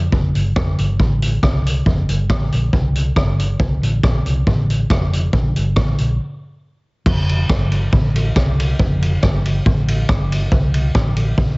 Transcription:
0.12 F1, kick
0.35 G1, closed hi-hat
0.56 F1, kick, cross-stick
0.78 G1, closed hi-hat
0.99 A1, kick
1.22 closed hi-hat
1.43 C2, kick, cross-stick
1.67 closed hi-hat
1.86 F1, kick
2.09 G1, closed hi-hat
2.29 A1, kick, cross-stick
2.52 A#1, closed hi-hat
2.73 C2, kick
2.96 closed hi-hat
3.16 G1, kick, cross-stick
3.40 closed hi-hat
3.59 C2, kick
3.82 A1, closed hi-hat
4.03 A#1, kick, cross-stick
4.26 C2, closed hi-hat
4.47 A1, kick
4.70 closed hi-hat
4.90 F1, kick, cross-stick
5.13 closed hi-hat
5.33 A#1, kick
5.56 G1, closed hi-hat
5.76 A1, kick, cross-stick
5.98 A#1, closed hi-hat
7.06 F1, kick, crash
7.29 ride
7.49 G1, kick, cross-stick
7.72 ride
7.93 A1, kick
8.16 ride
8.36 C2, kick, cross-stick
8.60 ride
8.79 F1, kick
9.02 ride
9.23 G1, kick, cross-stick
9.46 ride
9.66 A1, kick
9.88 ride
10.09 G1, kick, cross-stick
10.32 ride
10.52 C2, kick
10.74 ride
10.95 A1, kick, cross-stick
11.17 ride
11.38 A#1, kick

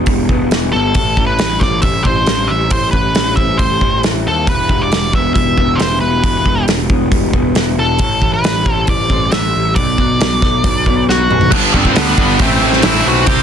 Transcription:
Already playing: E3 B3
0.06 E1 G3, kick, open hi-hat
0.29 E1 B3, kick
0.51 E1 E3, snare, open hi-hat
0.72 G1 G3 A4
0.95 A1 A2, kick, open hi-hat
1.17 A1 E3, kick
1.27 B4
1.39 A1 G3, snare, open hi-hat
1.60 A1 C4 D5, kick, snare
1.82 A1 G3 E5, kick, open hi-hat
2.04 A1 C4 C5, kick
2.27 A1 E3, snare, open hi-hat
2.48 A1 G3 E5
2.70 A1 A2 C5, kick, open hi-hat
2.91 A1 E3 B4, kick
3.15 A1 G3, snare, open hi-hat
3.36 A1 C4 E5, kick
3.58 A1 G3 C5, kick, open hi-hat
3.81 A1 C4, kick
4.03 A1 E3, snare, open hi-hat
4.26 D#2 G3 A4
4.47 E1 E3 B4, kick, open hi-hat
4.69 E1 G3, kick
4.82 D5
4.92 E1 G3, snare, open hi-hat
5.13 E1 B3 E5, kick
5.34 E1 G3 E5, kick, open hi-hat
5.57 E1 B3, kick
5.76 E3 C5, open hi-hat
5.80 E1, snare
6.00 E1 G3 B4
6.24 E1 E3, kick, open hi-hat
6.46 E1 G3, kick
6.68 E1 G3, snare, open hi-hat
6.90 E1 B3, kick
7.11 E1 G3, kick, open hi-hat
7.33 E1 B3, kick
7.55 E1 E3, snare, open hi-hat
7.78 E1 G3 A4
7.99 A1 A2, kick, open hi-hat
8.22 A1 E3, kick
8.34 B4
8.44 A1 G3, snare, open hi-hat
8.66 A1 C4, kick
8.87 A1 G3 D5, kick, open hi-hat
9.10 A1 C4, kick
9.32 A1 E3 E5, snare, open hi-hat
9.55 A1 G3
9.76 B1 B2 D5, kick, open hi-hat
9.98 B1 F#3, kick
10.19 B1 F#3, snare, open hi-hat
10.41 B1 B3, kick, snare
10.63 B1 F#3, kick, open hi-hat
10.86 B1 B3, kick
11.08 B1 B2 F#4 F#5, snare
11.30 B1 F#3, mid tom
11.41 floor tom
11.51 G1 G2 D3 G3 B3 D4 G4 B4 D5 B5, kick, crash
11.73 G1 G3 B3 C4 D4 C5, kick
11.85 kick
11.95 D2 D3 G3 B3 D4 B4, snare, open hi-hat
12.17 G1 G3 B3 D4, kick
12.39 A1 A2 E3 A3 C4 A4 C5 E5 C6, kick, open hi-hat
12.44 E4
12.62 A1 A3 C4 E4
12.73 snare
12.82 A1 E3 A3 C4 E4 E5, snare, open hi-hat
12.87 E4
13.06 B1 A3 C4 E4 F#4 F#5
13.26 C2 C3 G3 C4 G4 E5 G5, kick, open hi-hat
13.31 E4

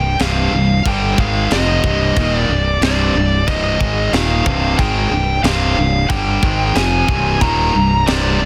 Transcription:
Already playing: C1 C2 G2 G5
0.19 C1 C2 G2 C3 F5, snare, crash
0.52 C1 C2 G2
0.86 G1 G2 D3 G3 G5, kick, crash
1.18 G#1 G#2 D#3 G#3 F5, kick
1.51 F1 F2 C3 F3 D#5, snare, crash
1.84 C1 C2 G2 C3, kick
2.16 D#1 D#2 A#2 D#3, kick, crash
2.35 D5
2.49 C1 C2 G2
2.81 C1 C2 G2 C3 D5, snare, crash
3.15 C1 C2 G2
3.47 C1 C2 G2 C3 D#5, kick, crash
3.81 G#1 G#2 D#3 G#3, kick
4.13 D#1 D#2 A#2 D#3 F5, snare, crash
4.46 C1 C2 G2 C3, kick
4.78 G#1 G#2 D#3 G#3 G5, kick, crash
5.11 C1 C2 G2
5.43 C1 C2 G2 C3 F5, snare, crash
5.77 C1 C2 G2
6.10 G1 G2 D3 G3 G5, kick, crash
6.43 G#1 G#2 D#3 G#3, kick
6.75 F1 F2 C3 F3 G#5, snare, crash
7.08 C1 C2 G2 C3, kick
7.41 D#1 D#2 A#2 D#3 A#5, kick, crash
7.75 C1 C2 G2
8.07 C1 C2 G2 C3 D5, snare, crash
8.40 C2 G2

